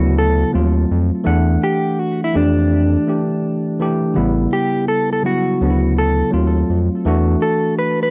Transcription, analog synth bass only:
Already playing: D2
0.55 D#2
0.91 F2
1.27 E2
2.35 F2
4.16 A1
5.61 D2
6.33 D#2
6.70 F2
7.06 E2

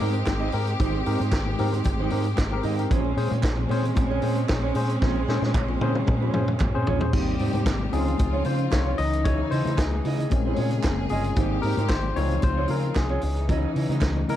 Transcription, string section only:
Already playing: G#3 C4 G4
2.92 G#3 C4 C#4
7.14 C3 G3 G4
7.92 C#3 C4 F4
8.99 E3 D#4
10.31 C#3 A#3 G#4
11.38 C3 G3 G4
12.16 C#3 C4 F4
13.22 E3 D#4

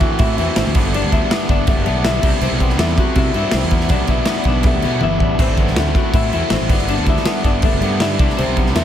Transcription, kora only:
Already playing: A3 B3 D4 E4
0.00 F#4
0.19 E4
0.38 E4
0.56 C4
0.76 B3
0.95 D4
1.12 E4
1.32 B3
1.50 D4
1.69 A3
1.86 B3
2.05 E4
2.24 D4
2.43 C4
2.61 B3
2.80 A3
2.99 F#4
3.18 E4
3.35 E4
3.54 C4
3.73 B3
3.91 D4
4.09 E4
4.29 B3
4.48 D4
4.66 A3
4.84 B3
5.03 E4
5.22 D4
5.40 C4
5.60 B3
5.78 A3
5.97 F#4
6.15 E4
6.33 E4
6.51 C4
6.70 B3
6.89 D4
7.09 E4
7.26 B3
7.45 D4
7.64 A3
7.82 B3
8.01 E4
8.20 D4
8.37 C4
8.56 B3
8.75 A3

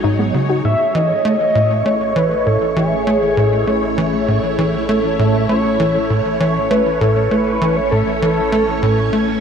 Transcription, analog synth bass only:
0.04 G#2
0.34 C#3
0.65 A2
0.95 E3
1.25 A3
1.55 A2
1.86 A3
2.16 E3
2.46 A2
2.76 E3
3.07 A3
3.37 A2
3.67 A3
3.98 E3
4.28 A2
4.59 E3
4.89 A3
5.19 A2
5.49 A3
5.80 E3
6.10 A2
6.40 E3
6.71 A3
7.01 A2
7.31 A3
7.61 E3
7.92 A2
8.22 E3
8.52 A3
8.83 A2
9.13 A3

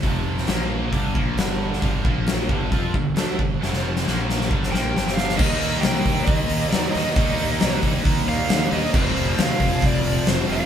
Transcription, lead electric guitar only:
4.72 G5
5.15 F5
5.36 D#5
5.81 G5
6.24 D#5
6.69 D5
6.92 D#5
8.29 F5
8.73 D#5
8.95 C5
9.39 F5
9.86 D5
10.30 C5
10.52 F5

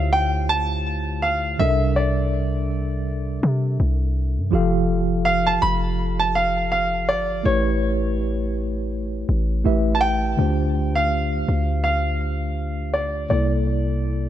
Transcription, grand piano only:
Already playing: F5
0.13 G5
0.49 A5
1.22 F5
1.59 E5
1.96 D5
5.25 F5
5.47 A5
5.62 B5
6.20 A5
6.35 F5
6.72 F5
7.09 D5
7.45 C#5
9.95 A5
10.01 G5
10.95 F5
11.84 F5
12.94 D5
13.30 D5

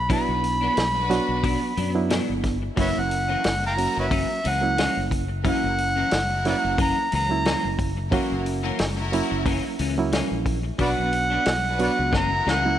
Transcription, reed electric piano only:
0.09 F#3 B3 D4 E4
1.10 F#3 B3 D4 F#4
1.94 F#3 B3 D4 E4
2.77 F#3 A#3 C#4 E4
3.77 F#3 A#3 C#4 F#4
4.61 F#3 A#3 C#4 E4
5.44 F#3 A#3 C#4 E4
6.45 F#3 A#3 C#4 E4
7.29 F#3 A#3 C#4 E4
8.12 F#3 A#3 C#4 F#4
9.12 F#3 A#3 C#4 E4
9.97 F#3 A#3 C#4 E4
10.79 F#3 B3 D4 F#4
11.79 F#3 B3 D4 F#4
12.64 F#3 A#3 C#4 E4

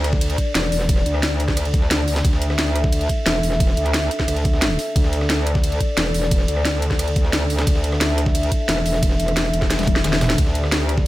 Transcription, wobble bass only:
Already playing: D2
0.55 E1
0.72 E1
1.06 D2
1.91 D2
2.25 D2
3.26 E1
3.43 E1
3.77 D2
4.28 D2
4.96 D2
5.97 E1
6.14 E1
6.48 D2
7.33 D2
7.67 D2
8.69 E1
8.86 E1
9.20 E1
9.53 E1
10.38 D2

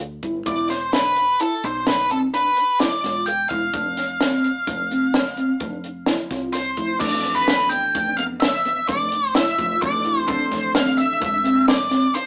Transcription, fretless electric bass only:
Already playing: D2
0.23 G1
0.46 E1
1.64 B1
3.04 E1
3.50 E1
3.74 F1
4.67 F1
5.61 F1
6.31 C2
6.77 F1
7.01 F1
7.95 F1
8.89 F1
9.59 F1
9.82 F1
10.29 F1
10.52 F1
11.22 E1

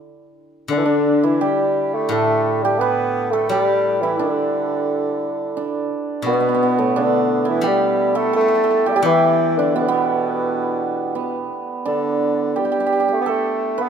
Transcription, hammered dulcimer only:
Already playing: D4
0.72 D4
0.86 D4
1.23 E4
1.41 G4
2.12 A4
2.65 G4
2.81 B4
3.33 A4
3.52 G4
4.03 E4
4.19 D4
5.57 D4
6.26 B3
6.33 B3
6.40 B3
6.49 B3
6.55 B3
6.63 B3
6.79 A3
6.96 D4
7.45 E4
7.64 G4
8.15 A4
8.33 A4
8.41 A4
8.48 A4
8.55 A4
8.64 A4
8.71 A4
8.86 G4
8.96 G4
9.05 E4
9.59 D4
9.76 B3
9.88 B3
11.15 B3
11.86 D4
12.56 G4
12.65 G4
12.72 G4
12.80 G4
12.87 G4
12.93 G4
13.00 G4
13.08 G4
13.26 A4
13.78 B4

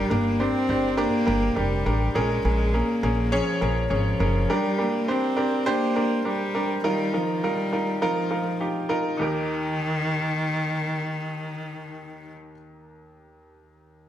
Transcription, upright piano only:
Already playing: G2 D4 A#4
0.10 D4 G4 A#4
0.40 D4 G4 C5
0.69 D4 G4 C5
0.97 D4 G4 A#4
1.26 D4 G4 A#4
1.56 D4 G4 A#4
1.86 D4 G4 A#4
2.15 A#2 C#4 G#4 A#4
2.45 C#4 G#4 A#4
2.74 C#4 G#4 A#4
3.03 C#4 G#4 A#4
3.32 C#4 G#4 C#5
3.61 C#4 G#4 A#4
3.90 C#4 G#4 C#5
4.19 C#4 G#4 A#4
4.50 G2 D4 G4 A#4
4.78 D4 G4 A#4
5.08 D4 G4 C5
5.37 D4 G4 A#4
5.66 D4 G4 C5
5.96 D4 G4 A#4
6.25 D4 G4 A#4
6.55 D4 G4 A#4
6.84 D#3 D#4 F4 A#4
7.13 D#4 F4 A#4
7.44 D#4 F4 A#4
7.73 D#4 F4 A#4
8.02 D#4 F4 A#4
8.31 D#4 F4 A#4
8.60 D#4 F4 G4
8.89 D#4 F4 A#4
9.17 D#2 D#4 G4
9.22 A#4

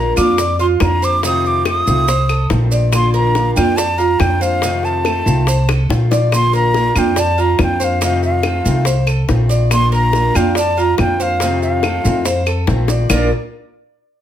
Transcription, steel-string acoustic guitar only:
Already playing: D3 A#3 D4 F4
0.16 A#3 D4 F4
0.38 muted steel-string acoustic guitar stroke
0.80 D3 A#3 D4 F4
1.22 C3 D#3 A3 C4 F4
1.65 D#3 A3 C4 F4
1.86 D#3 A3 C4 F4
2.08 muted steel-string acoustic guitar stroke
2.50 D#3 A3 C4 F4
2.92 D3 A#3 D4 F4
3.34 D3 A#3 D4 F4
3.56 A#3 D4 F4
3.77 muted steel-string acoustic guitar stroke
4.20 D3 A#3 D4 F4
4.63 C3 D#3 A3 C4 F4
5.04 D#3 A3 C4 F4
5.26 D#3 A3 C4 F4
5.47 muted steel-string acoustic guitar stroke
5.90 D#3 A3 C4 F4
6.32 D3 A#3 D4 F4
6.74 D3 A#3 D4 F4
6.95 A#3 D4 F4
7.16 muted steel-string acoustic guitar stroke
7.58 D3 A#3 D4 F4
8.01 C3 D#3 A3 C4 F4
8.44 D#3 A3 C4 F4
8.64 D#3 A3 C4 F4
8.85 muted steel-string acoustic guitar stroke
9.28 D#3 A3 C4 F4
9.70 D3 A#3 D4 F4
10.13 D3 A#3 D4 F4
10.34 A#3 D4 F4
10.56 muted steel-string acoustic guitar stroke
10.98 D3 A#3 D4 F4
11.40 C3 D#3 A3 C4 F4
11.83 D#3 A3 C4 F4
12.04 D#3 A3 C4 F4
12.25 muted steel-string acoustic guitar stroke
12.67 D#3 A3 C4 F4
13.09 A#2 D3 A#3 D4 F4

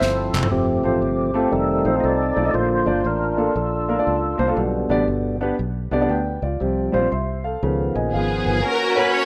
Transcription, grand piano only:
0.00 C5
0.84 A3 C4 F4 C5
1.34 A3 C4 F4 A4
1.85 A3 D#4 F4 C5
1.94 A3 D#4 F4 C5
2.36 A3 D#4 F4 D5
2.44 A3 D#4 F4 D#5
2.54 A#2
2.86 A#3 D4 F4 D5
3.37 A#3 D4 F4 A4
3.88 A#3 D4 F4 A#4
3.98 A#3 D4 F4 D5
4.38 A#3 D4 F4 C5
4.48 A#3 D4 F4 A4
4.58 B2
4.90 B3 D4 G4 D5
5.41 B3 D4 G4 B4
5.91 B3 D4 G4 D5
6.01 B3 D4 G4 D5
6.10 B4 G5
6.43 F4 D5
6.60 C3
6.92 G3 C4 F4 C5
7.12 E5 C6
7.44 A4 F5
7.63 C#3
7.95 D#5 G#5
8.14 G#4 F5
8.46 B4 G#5
8.96 C#4 F#4 A#4

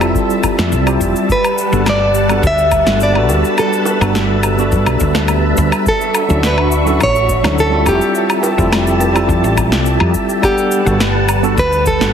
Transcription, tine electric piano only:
0.00 G3 C4 E4 F4 A4
0.86 G3 C4 E4 F4 G4
1.72 G3 B3 D4 F#4 A4
2.29 G3 B3 D4 F#4 A4
2.86 G3 B3 D4 F#4 A4
3.14 G3 B3 D4 F#4 A4
4.01 G3 B3 D4 F#4 A4
4.57 G3 B3 D4 F#4 A4
6.28 F#3 C#4 D4 E4 A4
6.86 F#3 C#4 D4 E4 A4
7.43 F#3 C#4 D4 E4 A4
7.70 G3 C4 E4 F4 A4
8.57 G3 C4 E4 F4 A4
9.13 G3 C4 E4 F4 A4
10.42 G3 B3 D4 A4 F#5
10.85 G3 B3 D4 F#4 A4
11.43 G3 B3 D4 F#4 A4
11.99 G3 B3 D4 F#4 A4

